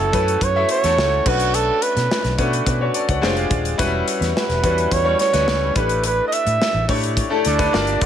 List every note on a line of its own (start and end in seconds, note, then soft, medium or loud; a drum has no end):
0.00 0.12 A3 loud
0.00 0.12 C#4 medium
0.00 0.12 E4 medium
0.00 0.13 F#4 medium
0.00 0.45 A4 loud
0.00 1.27 C#5 loud
0.00 closed hi-hat soft
0.12 0.35 F#2 medium
0.12 0.48 A3 medium
0.12 0.48 C#4 medium
0.12 0.48 E4 medium
0.12 0.49 F#4 medium
0.12 0.49 B4 medium
0.12 kick loud
0.12 closed hi-hat medium
0.28 closed hi-hat soft
0.41 0.63 F#2 loud
0.41 0.70 C#5 loud
0.41 kick medium
0.41 closed hi-hat medium
0.55 0.79 A3 medium
0.55 0.79 C#4 medium
0.55 0.79 E4 medium
0.55 0.79 F#4 medium
0.55 0.79 E5 medium
0.69 1.29 C#5 loud
0.69 closed hi-hat medium
0.83 0.95 E2 medium
0.83 1.25 A3 medium
0.83 1.25 C#4 medium
0.83 1.26 E4 medium
0.83 1.25 F#4 medium
0.83 1.26 A4 loud
0.83 snare soft
0.83 closed hi-hat medium
0.97 1.19 C#2 loud
0.97 snare loud
1.26 1.69 B1 medium
1.26 2.21 A3 medium
1.26 2.21 C#4 medium
1.26 2.21 D4 medium
1.26 2.21 F#4 medium
1.26 1.56 F#4 loud
1.26 2.21 B4 medium
1.26 kick loud
1.26 crash medium
1.40 closed hi-hat medium
1.54 1.84 A4 loud
1.54 closed hi-hat medium
1.82 2.38 B4 medium
1.82 closed hi-hat medium
1.96 2.07 B2 loud
1.96 snare soft
1.96 closed hi-hat soft
2.11 snare loud
2.24 2.35 B1 loud
2.24 snare soft
2.24 closed hi-hat soft
2.38 2.60 B2 loud
2.38 2.74 A3 medium
2.38 2.74 C#4 medium
2.38 2.74 D4 medium
2.38 2.66 F#4 medium
2.38 2.65 B4 medium
2.38 kick medium
2.38 closed hi-hat medium
2.53 closed hi-hat medium
2.67 2.88 B2 loud
2.67 2.80 F#4 medium
2.67 2.80 B4 medium
2.67 kick medium
2.67 closed hi-hat medium
2.81 2.94 F#4 medium
2.81 2.94 C#5 medium
2.94 3.08 A4 medium
2.94 3.08 D5 medium
2.94 closed hi-hat medium
3.08 3.20 C#2 medium
3.08 3.36 C#5 medium
3.08 3.35 F#5 medium
3.08 kick medium
3.08 closed hi-hat medium
3.21 3.44 F1 loud
3.21 3.70 G#3 loud
3.21 3.70 D4 loud
3.21 3.70 F4 medium
3.21 3.70 G4 medium
3.21 3.70 C5 loud
3.21 snare loud
3.37 closed hi-hat soft
3.51 3.73 D#1 medium
3.51 kick loud
3.51 closed hi-hat medium
3.65 closed hi-hat medium
3.78 4.01 E1 loud
3.78 4.50 G3 loud
3.78 4.50 C#4 medium
3.78 4.50 E4 medium
3.78 4.50 F#4 medium
3.78 4.50 B4 loud
3.78 kick loud
3.78 closed hi-hat loud
4.08 closed hi-hat medium
4.21 4.32 E2 loud
4.21 snare soft
4.21 closed hi-hat soft
4.37 4.94 B4 medium
4.37 snare loud
4.49 4.60 E1 medium
4.49 snare soft
4.49 closed hi-hat soft
4.63 4.85 E2 medium
4.63 4.99 G3 medium
4.63 4.99 C#4 medium
4.63 4.99 E4 medium
4.63 4.99 F#4 medium
4.63 4.99 B4 medium
4.63 kick loud
4.63 closed hi-hat medium
4.78 closed hi-hat soft
4.91 5.13 E2 medium
4.91 5.20 C#5 loud
4.91 kick medium
4.91 closed hi-hat medium
5.04 5.29 G3 medium
5.04 5.29 C#4 medium
5.04 5.29 E4 medium
5.04 5.29 F#4 medium
5.04 5.29 C#5 medium
5.19 5.72 C#5 loud
5.19 snare soft
5.19 closed hi-hat medium
5.32 5.45 D2 medium
5.32 5.75 G3 medium
5.32 5.75 C#4 medium
5.32 5.75 E4 medium
5.32 5.76 F#4 medium
5.32 5.75 B4 medium
5.32 snare soft
5.32 closed hi-hat medium
5.48 5.70 C#2 medium
5.48 snare loud
5.76 6.19 A1 medium
5.76 6.71 A3 medium
5.76 6.71 D4 medium
5.76 6.71 E4 medium
5.76 6.71 G4 medium
5.76 6.02 B4 medium
5.76 6.71 B4 medium
5.76 kick loud
5.76 closed hi-hat medium
5.89 closed hi-hat medium
6.04 6.25 B4 loud
6.04 closed hi-hat medium
6.28 6.35 D#5 medium
6.32 6.89 E5 loud
6.32 closed hi-hat medium
6.46 6.57 A2 loud
6.46 closed hi-hat soft
6.62 snare loud
6.74 6.85 A1 loud
6.88 7.21 A2 medium
6.88 7.24 A3 medium
6.88 7.24 D4 medium
6.88 7.24 E4 medium
6.88 7.25 G4 medium
6.88 7.25 C#5 loud
6.88 kick medium
6.88 open hi-hat medium
7.03 closed hi-hat soft
7.17 kick medium
7.17 closed hi-hat medium
7.30 7.54 A3 loud
7.30 7.54 D4 loud
7.30 7.54 E4 medium
7.30 7.54 G4 medium
7.30 7.55 A4 loud
7.45 7.67 D2 medium
7.45 8.04 D4 medium
7.45 snare soft
7.45 closed hi-hat medium
7.58 7.73 A3 loud
7.58 7.71 D4 medium
7.58 7.73 E4 medium
7.58 7.71 G4 medium
7.58 7.73 B4 loud
7.58 kick medium
7.58 closed hi-hat medium
7.72 7.95 G1 loud
7.72 8.06 A#3 medium
7.72 8.06 D4 medium
7.72 8.06 F4 medium
7.72 8.06 G4 medium
7.72 8.06 D5 loud
7.72 snare loud
7.87 closed hi-hat soft
8.01 8.06 F1 medium
8.01 8.06 F#4 loud
8.01 kick medium
8.01 open hi-hat medium